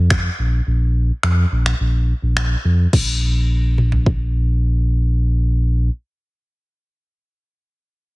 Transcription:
Already playing: F2
0.10 finger snap, kick
0.39 A#1
0.67 A#1
1.23 F2, finger snap
1.52 A#1
1.66 finger snap
1.80 A#1
2.22 A#1
2.37 finger snap
2.65 F2
2.93 A#1, kick, crash
3.78 mid tom
3.92 floor tom
4.06 kick

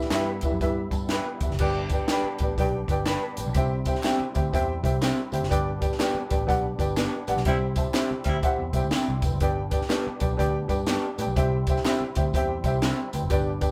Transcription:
Already playing: E3 G3 B3 E4
0.01 snare
0.11 G2 E4 G4 B4 E5, snare, clap, closed hi-hat, tambourine
0.41 E4 G4 B4 E5, kick, closed hi-hat, tambourine
0.52 F#2
0.61 G2 E4 G4 B4 E5, kick, closed hi-hat, tambourine
0.91 G2 A5, kick, closed hi-hat, tambourine
1.09 E4 G4 B4 G5, snare, clap, closed hi-hat, tambourine
1.41 E2 G4 E5, kick, closed hi-hat, tambourine
1.50 F#1, snare
1.59 G1 G2 G3 B3 D4 G4 B4 D5 G5, kick, crash, tambourine
1.90 G4 B4 D5 G5, kick, closed hi-hat, tambourine
2.08 D4 G4 B4 D5 G5, snare, clap, closed hi-hat, tambourine
2.24 muted picked electric bass stroke
2.39 A1 G4 B4 D5, kick, closed hi-hat, tambourine
2.43 G5
2.58 B1 G4 B4 D5 G5, kick, closed hi-hat
2.88 G1 G4 B4 D5 G5, kick, closed hi-hat, tambourine
3.06 D4 G4 B4 D5 B5, snare, clap, closed hi-hat, tambourine
3.37 A1 B4 G5, closed hi-hat, tambourine
3.47 B1
3.53 C2 C3 G3 C4 E4 G4 C5 E5 G5, kick, closed hi-hat, tambourine
3.85 G4 C5 E5 G5, kick, closed hi-hat, tambourine
3.95 snare
4.03 C4 E4 G4 C5 E5 G5, snare, clap, closed hi-hat, tambourine
4.20 muted picked electric bass stroke
4.34 D2 G4 C5 E5 G5, kick, closed hi-hat, tambourine
4.52 E2 G4 C5 E5 G5, kick, closed hi-hat, tambourine
4.83 C2 G4 C5 E5 G5, kick, closed hi-hat, tambourine
5.01 C4 E4 G4 C5 E5 G5, snare, clap, closed hi-hat, tambourine
5.32 D2 G4 C5 E5 G5, closed hi-hat, tambourine
5.42 F#1, snare
5.50 G1 G2 G3 B3 D4 G4 B4 D5 G5, kick, closed hi-hat, tambourine
5.80 G4 B4 D5 G5, kick, closed hi-hat, tambourine
5.92 snare
5.99 B3 D4 G4 B4 D5 G5, snare, clap, closed hi-hat, tambourine
6.15 muted picked electric bass stroke
6.29 A1 G4 B4 D5 G5, kick, closed hi-hat, tambourine
6.47 B1 G4 B4 D5 F#5, kick, closed hi-hat, tambourine
6.78 G1 G4 B4 D5 G5, kick, closed hi-hat, tambourine
6.96 B3 D4 G4 B4 D5 G5, snare, clap, closed hi-hat, tambourine
7.27 A1 G4 B4 D5 F#5, closed hi-hat, tambourine
7.37 B1, snare
7.45 C2 C3 G3 C4 E4 G4 C5 E5 G5, kick, closed hi-hat, tambourine
7.76 G4 C5 E5 A5, kick, closed hi-hat, tambourine
7.93 C4 E4 G4 C5 E5 G5, snare, clap, closed hi-hat, tambourine
8.11 muted picked electric bass stroke
8.24 D2 C3 G3 E4 G4 C5 E5 G5, kick, closed hi-hat, tambourine
8.42 G4 C5 E5 F#5, kick, closed hi-hat, tambourine
8.59 E2
8.73 C2 G4 C5 E5 G5, kick, closed hi-hat, tambourine
8.84 D2
8.91 C4 E4 G4 E5 C6, snare, clap, closed hi-hat, tambourine
9.09 C2
9.22 F1 B4 G5, kick, closed hi-hat, tambourine
9.34 F#1
9.40 G1 G2 B3 D4 G4 B4 D5 G5, kick, closed hi-hat, tambourine
9.71 G4 B4 D5 G5, kick, closed hi-hat, tambourine
9.81 snare
9.88 B3 D4 G4 B4 D5 G5, snare, clap, closed hi-hat, tambourine
10.07 muted picked electric bass stroke
10.19 B1 G4 B4 D5 G5, kick, closed hi-hat, tambourine
10.37 D2 G4 B4 D5 G5, kick, closed hi-hat, tambourine
10.68 G2 G4 B4 D5 G5, kick, closed hi-hat, tambourine
10.86 B3 D4 G4 B4 D5 G5, snare, clap, closed hi-hat, tambourine
11.18 A2 G4 B4 D5 G5, closed hi-hat, tambourine
11.27 B1
11.36 C2 C3 C4 E4 G4 C5 E5 G5, kick, closed hi-hat, tambourine
11.67 G4 C5 E5 G5, kick, closed hi-hat, tambourine
11.76 snare
11.85 C4 E4 G4 C5 E5 G5, snare, clap, closed hi-hat, tambourine
12.00 muted picked electric bass stroke
12.15 D2 G4 C5 E5 G5, kick, closed hi-hat, tambourine
12.33 E2 G4 C5 E5 G5, kick, closed hi-hat, tambourine
12.64 C2 G4 C5 E5 G5, kick, closed hi-hat, tambourine
12.82 C4 E4 G4 C5 A5, snare, clap, closed hi-hat, tambourine
13.13 D2 B4 G5, closed hi-hat, tambourine
13.23 F#1
13.30 G1 G2 G3 B3 D4 G4 B4 D5 G5, kick, closed hi-hat, tambourine
13.61 G4 B4 D5 G5, kick, closed hi-hat, tambourine

